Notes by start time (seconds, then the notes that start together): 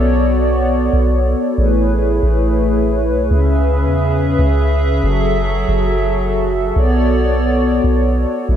Already playing: B1 B3 F#4 A4 C#5 D5
0.93 B1
1.58 A1 A3 E4 G#4 B4
2.23 A1
3.09 B1
3.31 C#2 C#3 C#4 G#4 E5
3.85 E2
4.39 C#2
5.03 F#1 F#3 F#4 A4
5.68 F#1
6.76 B1 B3 C#5 D5
7.84 B1
8.49 A1 G#3 A3 E4 B4 C#5